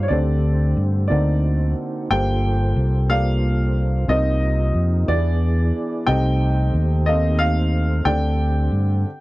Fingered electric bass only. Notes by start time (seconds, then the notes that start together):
0.11 D2
0.77 G2
1.11 D2
2.10 G1
2.76 C2
4.08 C2
4.75 F2
5.08 E2
6.08 C2
6.74 D#2
8.05 D2
8.72 G2